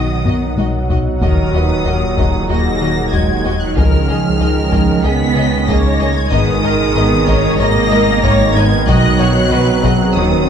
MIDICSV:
0, 0, Header, 1, 13, 480
1, 0, Start_track
1, 0, Tempo, 638298
1, 913, Time_signature, 4, 2, 24, 8
1, 7890, End_track
2, 0, Start_track
2, 0, Title_t, "Violin section"
2, 0, Program_c, 0, 48
2, 0, Note_on_c, 0, 87, 80
2, 673, Note_off_c, 0, 87, 0
2, 911, Note_on_c, 0, 87, 91
2, 1842, Note_off_c, 0, 87, 0
2, 1875, Note_on_c, 0, 94, 108
2, 2350, Note_on_c, 0, 92, 90
2, 2354, Note_off_c, 0, 94, 0
2, 2711, Note_off_c, 0, 92, 0
2, 2719, Note_on_c, 0, 90, 78
2, 2833, Note_on_c, 0, 89, 107
2, 2836, Note_off_c, 0, 90, 0
2, 3773, Note_off_c, 0, 89, 0
2, 3794, Note_on_c, 0, 95, 114
2, 4264, Note_off_c, 0, 95, 0
2, 4271, Note_on_c, 0, 94, 99
2, 4632, Note_off_c, 0, 94, 0
2, 4638, Note_on_c, 0, 92, 104
2, 4750, Note_on_c, 0, 87, 124
2, 4755, Note_off_c, 0, 92, 0
2, 5692, Note_off_c, 0, 87, 0
2, 5712, Note_on_c, 0, 94, 127
2, 6418, Note_off_c, 0, 94, 0
2, 6427, Note_on_c, 0, 92, 127
2, 6670, Note_off_c, 0, 92, 0
2, 6671, Note_on_c, 0, 90, 127
2, 7632, Note_off_c, 0, 90, 0
2, 7634, Note_on_c, 0, 87, 106
2, 7890, Note_off_c, 0, 87, 0
2, 7890, End_track
3, 0, Start_track
3, 0, Title_t, "Violin section"
3, 0, Program_c, 1, 48
3, 198, Note_on_c, 1, 75, 57
3, 201, Note_on_c, 1, 66, 54
3, 258, Note_off_c, 1, 75, 0
3, 261, Note_off_c, 1, 66, 0
3, 438, Note_on_c, 1, 66, 62
3, 438, Note_on_c, 1, 75, 57
3, 498, Note_off_c, 1, 66, 0
3, 498, Note_off_c, 1, 75, 0
3, 678, Note_on_c, 1, 66, 56
3, 680, Note_on_c, 1, 75, 59
3, 738, Note_off_c, 1, 66, 0
3, 741, Note_off_c, 1, 75, 0
3, 916, Note_on_c, 1, 75, 62
3, 919, Note_on_c, 1, 66, 63
3, 976, Note_off_c, 1, 75, 0
3, 979, Note_off_c, 1, 66, 0
3, 1156, Note_on_c, 1, 75, 55
3, 1157, Note_on_c, 1, 66, 55
3, 1216, Note_off_c, 1, 75, 0
3, 1217, Note_off_c, 1, 66, 0
3, 1394, Note_on_c, 1, 66, 55
3, 1396, Note_on_c, 1, 75, 60
3, 1454, Note_off_c, 1, 66, 0
3, 1456, Note_off_c, 1, 75, 0
3, 1635, Note_on_c, 1, 66, 59
3, 1635, Note_on_c, 1, 75, 60
3, 1695, Note_off_c, 1, 66, 0
3, 1695, Note_off_c, 1, 75, 0
3, 1875, Note_on_c, 1, 66, 68
3, 1876, Note_on_c, 1, 75, 63
3, 1936, Note_off_c, 1, 66, 0
3, 1936, Note_off_c, 1, 75, 0
3, 2114, Note_on_c, 1, 66, 59
3, 2116, Note_on_c, 1, 75, 61
3, 2174, Note_off_c, 1, 66, 0
3, 2176, Note_off_c, 1, 75, 0
3, 2351, Note_on_c, 1, 66, 64
3, 2352, Note_on_c, 1, 75, 60
3, 2411, Note_off_c, 1, 66, 0
3, 2412, Note_off_c, 1, 75, 0
3, 2593, Note_on_c, 1, 75, 64
3, 2595, Note_on_c, 1, 66, 62
3, 2654, Note_off_c, 1, 75, 0
3, 2655, Note_off_c, 1, 66, 0
3, 2829, Note_on_c, 1, 68, 64
3, 2830, Note_on_c, 1, 75, 67
3, 2889, Note_off_c, 1, 68, 0
3, 2890, Note_off_c, 1, 75, 0
3, 3069, Note_on_c, 1, 68, 62
3, 3071, Note_on_c, 1, 75, 57
3, 3130, Note_off_c, 1, 68, 0
3, 3131, Note_off_c, 1, 75, 0
3, 3308, Note_on_c, 1, 68, 63
3, 3310, Note_on_c, 1, 75, 63
3, 3368, Note_off_c, 1, 68, 0
3, 3370, Note_off_c, 1, 75, 0
3, 3550, Note_on_c, 1, 68, 60
3, 3550, Note_on_c, 1, 75, 66
3, 3610, Note_off_c, 1, 68, 0
3, 3610, Note_off_c, 1, 75, 0
3, 3791, Note_on_c, 1, 75, 70
3, 3792, Note_on_c, 1, 68, 72
3, 3851, Note_off_c, 1, 75, 0
3, 3852, Note_off_c, 1, 68, 0
3, 4030, Note_on_c, 1, 75, 69
3, 4032, Note_on_c, 1, 68, 71
3, 4091, Note_off_c, 1, 75, 0
3, 4092, Note_off_c, 1, 68, 0
3, 4274, Note_on_c, 1, 68, 73
3, 4275, Note_on_c, 1, 75, 73
3, 4334, Note_off_c, 1, 68, 0
3, 4335, Note_off_c, 1, 75, 0
3, 4511, Note_on_c, 1, 75, 71
3, 4513, Note_on_c, 1, 68, 70
3, 4571, Note_off_c, 1, 75, 0
3, 4573, Note_off_c, 1, 68, 0
3, 4746, Note_on_c, 1, 70, 82
3, 4746, Note_on_c, 1, 75, 87
3, 4806, Note_off_c, 1, 70, 0
3, 4806, Note_off_c, 1, 75, 0
3, 4987, Note_on_c, 1, 70, 75
3, 4990, Note_on_c, 1, 75, 73
3, 5047, Note_off_c, 1, 70, 0
3, 5050, Note_off_c, 1, 75, 0
3, 5227, Note_on_c, 1, 75, 81
3, 5228, Note_on_c, 1, 70, 80
3, 5287, Note_off_c, 1, 75, 0
3, 5288, Note_off_c, 1, 70, 0
3, 5469, Note_on_c, 1, 70, 82
3, 5469, Note_on_c, 1, 75, 86
3, 5529, Note_off_c, 1, 70, 0
3, 5530, Note_off_c, 1, 75, 0
3, 5709, Note_on_c, 1, 70, 90
3, 5711, Note_on_c, 1, 75, 85
3, 5769, Note_off_c, 1, 70, 0
3, 5771, Note_off_c, 1, 75, 0
3, 5952, Note_on_c, 1, 75, 83
3, 5955, Note_on_c, 1, 70, 87
3, 6012, Note_off_c, 1, 75, 0
3, 6015, Note_off_c, 1, 70, 0
3, 6193, Note_on_c, 1, 70, 82
3, 6193, Note_on_c, 1, 75, 86
3, 6253, Note_off_c, 1, 70, 0
3, 6254, Note_off_c, 1, 75, 0
3, 6439, Note_on_c, 1, 75, 81
3, 6440, Note_on_c, 1, 70, 89
3, 6499, Note_off_c, 1, 75, 0
3, 6500, Note_off_c, 1, 70, 0
3, 6677, Note_on_c, 1, 66, 91
3, 6678, Note_on_c, 1, 75, 95
3, 6737, Note_off_c, 1, 66, 0
3, 6738, Note_off_c, 1, 75, 0
3, 6913, Note_on_c, 1, 66, 81
3, 6914, Note_on_c, 1, 75, 75
3, 6973, Note_off_c, 1, 66, 0
3, 6974, Note_off_c, 1, 75, 0
3, 7156, Note_on_c, 1, 66, 76
3, 7156, Note_on_c, 1, 75, 78
3, 7216, Note_off_c, 1, 66, 0
3, 7216, Note_off_c, 1, 75, 0
3, 7394, Note_on_c, 1, 66, 71
3, 7395, Note_on_c, 1, 75, 75
3, 7454, Note_off_c, 1, 66, 0
3, 7455, Note_off_c, 1, 75, 0
3, 7635, Note_on_c, 1, 73, 74
3, 7636, Note_on_c, 1, 66, 73
3, 7695, Note_off_c, 1, 73, 0
3, 7696, Note_off_c, 1, 66, 0
3, 7890, End_track
4, 0, Start_track
4, 0, Title_t, "Viola section"
4, 0, Program_c, 2, 48
4, 0, Note_on_c, 2, 75, 93
4, 673, Note_off_c, 2, 75, 0
4, 912, Note_on_c, 2, 70, 80
4, 1136, Note_off_c, 2, 70, 0
4, 1152, Note_on_c, 2, 71, 73
4, 1392, Note_off_c, 2, 71, 0
4, 1396, Note_on_c, 2, 70, 70
4, 1634, Note_off_c, 2, 70, 0
4, 1635, Note_on_c, 2, 68, 76
4, 2339, Note_off_c, 2, 68, 0
4, 2353, Note_on_c, 2, 66, 77
4, 2823, Note_off_c, 2, 66, 0
4, 2833, Note_on_c, 2, 70, 96
4, 3073, Note_off_c, 2, 70, 0
4, 3076, Note_on_c, 2, 68, 71
4, 3313, Note_on_c, 2, 70, 87
4, 3314, Note_off_c, 2, 68, 0
4, 3792, Note_on_c, 2, 68, 76
4, 3793, Note_off_c, 2, 70, 0
4, 4030, Note_on_c, 2, 75, 85
4, 4033, Note_off_c, 2, 68, 0
4, 4271, Note_off_c, 2, 75, 0
4, 4274, Note_on_c, 2, 73, 95
4, 4753, Note_off_c, 2, 73, 0
4, 4755, Note_on_c, 2, 59, 109
4, 4989, Note_off_c, 2, 59, 0
4, 4989, Note_on_c, 2, 70, 91
4, 5226, Note_off_c, 2, 70, 0
4, 5232, Note_on_c, 2, 59, 98
4, 5468, Note_on_c, 2, 73, 102
4, 5472, Note_off_c, 2, 59, 0
4, 5707, Note_on_c, 2, 75, 114
4, 5710, Note_off_c, 2, 73, 0
4, 6190, Note_off_c, 2, 75, 0
4, 6193, Note_on_c, 2, 73, 112
4, 6428, Note_off_c, 2, 73, 0
4, 6433, Note_on_c, 2, 59, 110
4, 6670, Note_on_c, 2, 75, 127
4, 6673, Note_off_c, 2, 59, 0
4, 6907, Note_off_c, 2, 75, 0
4, 6907, Note_on_c, 2, 73, 104
4, 7149, Note_on_c, 2, 71, 100
4, 7150, Note_off_c, 2, 73, 0
4, 7391, Note_off_c, 2, 71, 0
4, 7394, Note_on_c, 2, 68, 86
4, 7632, Note_on_c, 2, 66, 71
4, 7633, Note_off_c, 2, 68, 0
4, 7890, Note_off_c, 2, 66, 0
4, 7890, End_track
5, 0, Start_track
5, 0, Title_t, "Analog synth pad"
5, 0, Program_c, 3, 89
5, 0, Note_on_c, 3, 47, 77
5, 0, Note_on_c, 3, 63, 81
5, 0, Note_on_c, 3, 75, 84
5, 0, Note_on_c, 3, 78, 85
5, 881, Note_off_c, 3, 75, 0
5, 882, Note_off_c, 3, 63, 0
5, 911, Note_off_c, 3, 47, 0
5, 917, Note_on_c, 3, 46, 77
5, 917, Note_on_c, 3, 63, 80
5, 919, Note_on_c, 3, 75, 81
5, 2805, Note_off_c, 3, 63, 0
5, 2833, Note_off_c, 3, 78, 0
5, 2835, Note_off_c, 3, 46, 0
5, 2838, Note_on_c, 3, 61, 80
5, 2840, Note_on_c, 3, 68, 86
5, 2841, Note_on_c, 3, 56, 84
5, 4726, Note_off_c, 3, 75, 0
5, 4755, Note_off_c, 3, 61, 0
5, 4756, Note_off_c, 3, 68, 0
5, 4757, Note_on_c, 3, 47, 85
5, 4757, Note_on_c, 3, 75, 86
5, 4758, Note_on_c, 3, 70, 85
5, 6670, Note_on_c, 3, 54, 91
5, 6671, Note_on_c, 3, 71, 90
5, 6675, Note_off_c, 3, 70, 0
5, 6677, Note_off_c, 3, 56, 0
5, 7632, Note_off_c, 3, 71, 0
5, 7633, Note_on_c, 3, 61, 90
5, 7633, Note_on_c, 3, 70, 86
5, 7635, Note_off_c, 3, 47, 0
5, 7890, Note_off_c, 3, 54, 0
5, 7890, Note_off_c, 3, 61, 0
5, 7890, Note_off_c, 3, 70, 0
5, 7890, Note_off_c, 3, 75, 0
5, 7890, End_track
6, 0, Start_track
6, 0, Title_t, "French horn section"
6, 0, Program_c, 4, 60
6, 0, Note_on_c, 4, 47, 94
6, 0, Note_on_c, 4, 63, 91
6, 644, Note_off_c, 4, 47, 0
6, 644, Note_off_c, 4, 63, 0
6, 912, Note_on_c, 4, 46, 87
6, 914, Note_on_c, 4, 63, 79
6, 2802, Note_off_c, 4, 46, 0
6, 2836, Note_on_c, 4, 61, 89
6, 4723, Note_off_c, 4, 63, 0
6, 4724, Note_off_c, 4, 61, 0
6, 4752, Note_on_c, 4, 70, 111
6, 4753, Note_on_c, 4, 63, 99
6, 6642, Note_off_c, 4, 70, 0
6, 6668, Note_on_c, 4, 59, 109
6, 7504, Note_off_c, 4, 59, 0
6, 7504, Note_off_c, 4, 63, 0
6, 7632, Note_on_c, 4, 61, 94
6, 7633, Note_on_c, 4, 58, 90
6, 7890, Note_off_c, 4, 58, 0
6, 7890, Note_off_c, 4, 61, 0
6, 7890, End_track
7, 0, Start_track
7, 0, Title_t, "Cello section"
7, 0, Program_c, 5, 48
7, 0, Note_on_c, 5, 51, 70
7, 673, Note_off_c, 5, 51, 0
7, 915, Note_on_c, 5, 51, 81
7, 1844, Note_off_c, 5, 51, 0
7, 1871, Note_on_c, 5, 58, 86
7, 2352, Note_off_c, 5, 58, 0
7, 2355, Note_on_c, 5, 56, 83
7, 2712, Note_on_c, 5, 54, 81
7, 2714, Note_off_c, 5, 56, 0
7, 2830, Note_off_c, 5, 54, 0
7, 2836, Note_on_c, 5, 53, 90
7, 3791, Note_on_c, 5, 59, 111
7, 3794, Note_off_c, 5, 53, 0
7, 4272, Note_off_c, 5, 59, 0
7, 4274, Note_on_c, 5, 58, 93
7, 4632, Note_on_c, 5, 56, 96
7, 4633, Note_off_c, 5, 58, 0
7, 4752, Note_off_c, 5, 56, 0
7, 4753, Note_on_c, 5, 51, 112
7, 5694, Note_off_c, 5, 51, 0
7, 5715, Note_on_c, 5, 58, 127
7, 6432, Note_on_c, 5, 56, 114
7, 6434, Note_off_c, 5, 58, 0
7, 6672, Note_on_c, 5, 54, 127
7, 6673, Note_off_c, 5, 56, 0
7, 7613, Note_off_c, 5, 54, 0
7, 7632, Note_on_c, 5, 51, 95
7, 7890, Note_off_c, 5, 51, 0
7, 7890, End_track
8, 0, Start_track
8, 0, Title_t, "Trombone section"
8, 0, Program_c, 6, 61
8, 0, Note_on_c, 6, 51, 104
8, 0, Note_on_c, 6, 54, 86
8, 645, Note_off_c, 6, 51, 0
8, 921, Note_on_c, 6, 51, 82
8, 2802, Note_off_c, 6, 54, 0
8, 2841, Note_on_c, 6, 56, 89
8, 4727, Note_off_c, 6, 51, 0
8, 4745, Note_on_c, 6, 51, 100
8, 6545, Note_off_c, 6, 56, 0
8, 6673, Note_on_c, 6, 54, 115
8, 7890, Note_off_c, 6, 51, 0
8, 7890, Note_off_c, 6, 54, 0
8, 7890, End_track
9, 0, Start_track
9, 0, Title_t, "Analog synth bass"
9, 0, Program_c, 7, 38
9, 0, Note_on_c, 7, 47, 73
9, 95, Note_off_c, 7, 47, 0
9, 191, Note_on_c, 7, 59, 66
9, 335, Note_off_c, 7, 59, 0
9, 433, Note_on_c, 7, 47, 89
9, 577, Note_off_c, 7, 47, 0
9, 671, Note_on_c, 7, 47, 74
9, 816, Note_off_c, 7, 47, 0
9, 913, Note_on_c, 7, 39, 99
9, 1057, Note_off_c, 7, 39, 0
9, 1154, Note_on_c, 7, 39, 68
9, 1298, Note_off_c, 7, 39, 0
9, 1392, Note_on_c, 7, 39, 69
9, 1536, Note_off_c, 7, 39, 0
9, 1633, Note_on_c, 7, 39, 96
9, 1777, Note_off_c, 7, 39, 0
9, 1877, Note_on_c, 7, 39, 78
9, 2020, Note_off_c, 7, 39, 0
9, 2118, Note_on_c, 7, 51, 63
9, 2260, Note_off_c, 7, 51, 0
9, 2354, Note_on_c, 7, 39, 99
9, 2498, Note_off_c, 7, 39, 0
9, 2596, Note_on_c, 7, 39, 73
9, 2739, Note_off_c, 7, 39, 0
9, 2836, Note_on_c, 7, 37, 104
9, 2979, Note_off_c, 7, 37, 0
9, 3077, Note_on_c, 7, 37, 72
9, 3220, Note_off_c, 7, 37, 0
9, 3313, Note_on_c, 7, 37, 68
9, 3457, Note_off_c, 7, 37, 0
9, 3553, Note_on_c, 7, 37, 110
9, 3697, Note_off_c, 7, 37, 0
9, 3791, Note_on_c, 7, 37, 76
9, 3936, Note_off_c, 7, 37, 0
9, 4034, Note_on_c, 7, 49, 65
9, 4177, Note_off_c, 7, 49, 0
9, 4273, Note_on_c, 7, 37, 95
9, 4417, Note_off_c, 7, 37, 0
9, 4512, Note_on_c, 7, 37, 74
9, 4656, Note_off_c, 7, 37, 0
9, 4751, Note_on_c, 7, 44, 110
9, 4896, Note_off_c, 7, 44, 0
9, 4992, Note_on_c, 7, 44, 77
9, 5136, Note_off_c, 7, 44, 0
9, 5231, Note_on_c, 7, 44, 77
9, 5376, Note_off_c, 7, 44, 0
9, 5474, Note_on_c, 7, 44, 108
9, 5617, Note_off_c, 7, 44, 0
9, 5714, Note_on_c, 7, 44, 85
9, 5858, Note_off_c, 7, 44, 0
9, 5956, Note_on_c, 7, 56, 77
9, 6099, Note_off_c, 7, 56, 0
9, 6196, Note_on_c, 7, 44, 107
9, 6339, Note_off_c, 7, 44, 0
9, 6433, Note_on_c, 7, 44, 81
9, 6577, Note_off_c, 7, 44, 0
9, 6676, Note_on_c, 7, 47, 114
9, 6819, Note_off_c, 7, 47, 0
9, 6918, Note_on_c, 7, 47, 78
9, 7060, Note_off_c, 7, 47, 0
9, 7156, Note_on_c, 7, 47, 76
9, 7299, Note_off_c, 7, 47, 0
9, 7395, Note_on_c, 7, 47, 118
9, 7539, Note_off_c, 7, 47, 0
9, 7637, Note_on_c, 7, 39, 77
9, 7780, Note_off_c, 7, 39, 0
9, 7890, End_track
10, 0, Start_track
10, 0, Title_t, "Double bass section"
10, 0, Program_c, 8, 48
10, 0, Note_on_c, 8, 35, 78
10, 377, Note_off_c, 8, 35, 0
10, 433, Note_on_c, 8, 35, 79
10, 856, Note_off_c, 8, 35, 0
10, 914, Note_on_c, 8, 39, 75
10, 1337, Note_off_c, 8, 39, 0
10, 1393, Note_on_c, 8, 39, 71
10, 1816, Note_off_c, 8, 39, 0
10, 1877, Note_on_c, 8, 39, 78
10, 2298, Note_off_c, 8, 39, 0
10, 2357, Note_on_c, 8, 39, 84
10, 2778, Note_off_c, 8, 39, 0
10, 2838, Note_on_c, 8, 37, 77
10, 3259, Note_off_c, 8, 37, 0
10, 3314, Note_on_c, 8, 37, 74
10, 3737, Note_off_c, 8, 37, 0
10, 3795, Note_on_c, 8, 37, 91
10, 4217, Note_off_c, 8, 37, 0
10, 4276, Note_on_c, 8, 37, 85
10, 4698, Note_off_c, 8, 37, 0
10, 4756, Note_on_c, 8, 32, 93
10, 5178, Note_off_c, 8, 32, 0
10, 5233, Note_on_c, 8, 32, 103
10, 5656, Note_off_c, 8, 32, 0
10, 5714, Note_on_c, 8, 32, 108
10, 6137, Note_off_c, 8, 32, 0
10, 6194, Note_on_c, 8, 32, 115
10, 6617, Note_off_c, 8, 32, 0
10, 6677, Note_on_c, 8, 35, 120
10, 7098, Note_off_c, 8, 35, 0
10, 7154, Note_on_c, 8, 35, 91
10, 7577, Note_off_c, 8, 35, 0
10, 7638, Note_on_c, 8, 39, 91
10, 7890, Note_off_c, 8, 39, 0
10, 7890, End_track
11, 0, Start_track
11, 0, Title_t, "Sub bass"
11, 0, Program_c, 10, 38
11, 0, Note_on_c, 10, 35, 82
11, 912, Note_on_c, 10, 27, 78
11, 923, Note_off_c, 10, 35, 0
11, 2832, Note_on_c, 10, 37, 83
11, 2844, Note_off_c, 10, 27, 0
11, 4755, Note_on_c, 10, 32, 89
11, 4766, Note_off_c, 10, 37, 0
11, 6674, Note_on_c, 10, 35, 87
11, 6686, Note_off_c, 10, 32, 0
11, 7635, Note_on_c, 10, 27, 85
11, 7646, Note_off_c, 10, 35, 0
11, 7890, Note_off_c, 10, 27, 0
11, 7890, End_track
12, 0, Start_track
12, 0, Title_t, "Swell"
12, 0, Program_c, 11, 103
12, 6672, Note_on_c, 11, 60, 88
12, 7890, Note_off_c, 11, 60, 0
12, 7890, End_track
13, 0, Start_track
13, 0, Title_t, "Taiko and cinematic ensemble drums"
13, 192, Note_on_c, 9, 45, 79
13, 267, Note_off_c, 9, 45, 0
13, 434, Note_on_c, 9, 48, 85
13, 509, Note_off_c, 9, 48, 0
13, 675, Note_on_c, 9, 43, 90
13, 750, Note_off_c, 9, 43, 0
13, 916, Note_on_c, 9, 41, 104
13, 991, Note_off_c, 9, 41, 0
13, 1635, Note_on_c, 9, 41, 87
13, 1710, Note_off_c, 9, 41, 0
13, 2356, Note_on_c, 9, 41, 76
13, 2431, Note_off_c, 9, 41, 0
13, 2837, Note_on_c, 9, 41, 106
13, 2912, Note_off_c, 9, 41, 0
13, 3559, Note_on_c, 9, 41, 85
13, 3634, Note_off_c, 9, 41, 0
13, 4275, Note_on_c, 9, 41, 79
13, 4350, Note_off_c, 9, 41, 0
13, 4752, Note_on_c, 9, 41, 113
13, 4827, Note_off_c, 9, 41, 0
13, 5476, Note_on_c, 9, 41, 94
13, 5551, Note_off_c, 9, 41, 0
13, 6194, Note_on_c, 9, 41, 80
13, 6269, Note_off_c, 9, 41, 0
13, 6674, Note_on_c, 9, 41, 114
13, 6750, Note_off_c, 9, 41, 0
13, 7398, Note_on_c, 9, 41, 87
13, 7474, Note_off_c, 9, 41, 0
13, 7890, End_track
0, 0, End_of_file